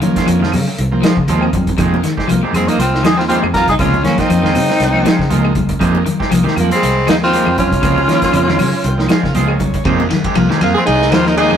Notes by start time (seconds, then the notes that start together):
0.02 D#3 F3 A#3 C#4, muted clean electric guitar stroke, closed hi-hat, low conga
0.16 G#3 C4 F4, muted fingered electric bass stroke, kick, snare, closed hi-hat
0.27 F2 F3, muted clean electric guitar stroke, closed hi-hat, claves
0.40 D#3 F3 C4 F4, snare, high conga
0.52 C#3, muted clean electric guitar stroke, open hi-hat, low conga, claves
0.68 muted clean electric guitar stroke, high conga
0.78 C2, closed hi-hat
0.91 F3 A#3 C4, muted clean electric guitar stroke
1.02 F3 G#3 C4 F4, snare, closed hi-hat, high conga, claves
1.17 C#3, muted clean electric guitar stroke, kick
1.27 D#2 F3 G#3 A#3 C4 D#4 F4, closed hi-hat, high conga
1.41 C4, high conga, claves
1.53 F2, muted clean electric guitar stroke, kick, closed hi-hat, low conga
1.67 muted clean electric guitar stroke, kick, closed hi-hat
1.78 F2 C3 D#3 F3 G#3 A#3 C4 D#4, muted clean electric guitar stroke, kick, closed hi-hat, high conga, claves
1.94 high conga
2.03 D#3, muted clean electric guitar stroke, snare, closed hi-hat
2.17 G#3 C4 G4, kick, snare
2.28 C2 F3 A#3 F4, muted clean electric guitar stroke, closed hi-hat, high conga, claves
2.43 D#3 G#3 C4 G4, muted clean electric guitar stroke, high conga
2.53 F2 F3 G#3 A#3 C4 D#4, muted clean electric guitar stroke, closed hi-hat, low conga, claves
2.68 A#3 D#4, muted clean electric guitar stroke, closed hi-hat, high conga
2.78 C2 C4 F4, closed hi-hat
2.94 muted clean electric guitar stroke, snare
3.03 D#2 D#3 F3 G#3 C4 D#4 G4 G#4, snare, closed hi-hat, high conga, claves
3.17 F3 A#3 C4 D#4 F4, muted clean electric guitar stroke, snare
3.28 D#3 G#3 C4 F4 G4, closed hi-hat, high conga
3.42 F2 G#3, high conga, claves
3.54 F4 A#4, muted clean electric guitar stroke, kick, snare, closed hi-hat, low conga
3.68 C2 D#4 G#4, muted clean electric guitar stroke, kick, closed hi-hat
3.79 C#2 C3 F3 G#3 A#3 C4 C#4 D#4 F4, kick, closed hi-hat, claves
3.94 high conga
4.03 D#3 F3 A#3 C4 C#4, muted clean electric guitar stroke, snare, closed hi-hat, low conga
4.08 A#3
4.18 C4 D#4 F4, muted fingered electric bass stroke, kick, snare, closed hi-hat
4.29 F2 F3, muted clean electric guitar stroke, closed hi-hat, high conga, claves
4.43 D#3 G#3 C4 F4, snare, high conga
4.55 C#3, muted clean electric guitar stroke, open hi-hat, low conga, claves
4.69 muted clean electric guitar stroke, snare, high conga
4.80 C2, snare, closed hi-hat
4.93 F3 A#3 C#4, muted clean electric guitar stroke
5.05 F3 G#3 F4, snare, closed hi-hat, high conga, claves
5.19 C#3, muted clean electric guitar stroke, kick, snare
5.30 C#2 F3 G#3 A#3 D#4 F4, muted clean electric guitar stroke, closed hi-hat, high conga
5.45 G#3, high conga, claves
5.55 muted clean electric guitar stroke, kick, closed hi-hat, high conga, low conga
5.69 muted clean electric guitar stroke, kick, closed hi-hat
5.80 F2 D#3 F3 G#3 A#3 C4 D#4 G4, muted clean electric guitar stroke, kick, closed hi-hat, high conga, claves
5.95 high conga
6.06 D#3, muted clean electric guitar stroke, closed hi-hat, low conga
6.20 G#3 C4 G4, kick, snare
6.31 C2 F3 A#3 D#4, muted clean electric guitar stroke, closed hi-hat, high conga, claves
6.44 D#3 C4 G4, muted clean electric guitar stroke, snare, high conga
6.56 F2 F3 A#3 F4, muted clean electric guitar stroke, closed hi-hat, low conga, claves
6.62 F3
6.70 C4, muted clean electric guitar stroke, closed hi-hat
6.75 G#3
6.83 C2, closed hi-hat
6.95 muted clean electric guitar stroke
7.07 D#2 D#3 F3 G#3 A#3 C4 D#4, snare, closed hi-hat, high conga, claves
7.21 F3 A#3 C4 D#4 F4, muted clean electric guitar stroke, snare
7.33 D#3 G#3 C4 G4, closed hi-hat, high conga
7.45 F2 G#3, claves
7.58 C#4 F4, muted clean electric guitar stroke, kick, closed hi-hat, low conga
7.72 C2, muted clean electric guitar stroke, kick, closed hi-hat
7.82 C#2 C3 F3 G#3 A#3 C4 D#4 F4, kick, closed hi-hat, claves
7.98 high conga
8.08 D#3 F3 A#3 D#4, muted clean electric guitar stroke, snare, closed hi-hat
8.22 C4 F4, muted fingered electric bass stroke, kick, snare, closed hi-hat
8.33 F2 C#3, muted clean electric guitar stroke, closed hi-hat, claves
8.48 D#3 G#3 C4 F4, snare, high conga
8.59 C#3 G#5, muted clean electric guitar stroke, open hi-hat, low conga, claves
8.73 muted clean electric guitar stroke, high conga
8.84 C2 G5, closed hi-hat
8.97 F3 A#3 D#4, muted clean electric guitar stroke, snare
9.09 F3 G#3 C4 F4 F5, snare, closed hi-hat, high conga, claves
9.23 C#3, muted clean electric guitar stroke, kick, snare
9.34 C#2 F3 G#3 A#3 C4 D#4 F4 D#5, closed hi-hat, high conga
9.48 G#3 C#5, high conga, claves
9.59 muted clean electric guitar stroke, kick, closed hi-hat, low conga
9.74 muted clean electric guitar stroke, kick, closed hi-hat
9.85 F2 C3 D#3 F3 G#3 A#3 C4 D#4 G4, kick, ride bell, claves
10.00 high conga
10.10 D#3, muted clean electric guitar stroke, snare, ride bell, low conga
10.24 G#3 C4 G4, kick, ride bell
10.35 C2 F3 A#3 F4, muted clean electric guitar stroke, ride bell, high conga, claves
10.50 D#3 G#3 C4 G4, snare, high conga
10.61 F2 F3 A#3 D#4 F4, muted clean electric guitar stroke, ride bell, low conga, claves
10.75 C4 G#4, muted clean electric guitar stroke
10.86 C2 D#4 G#4, ride bell
11.01 muted clean electric guitar stroke, snare
11.11 D#2 D#3 F3 G#3 C4 F4 G4 C5, snare, ride bell, high conga, claves
11.25 F3 A#3 D#4 A#4, muted clean electric guitar stroke, snare
11.37 D#3 G#3 C4 D#4 G4 G#4, ride bell, high conga
11.50 F2 G#3, high conga, claves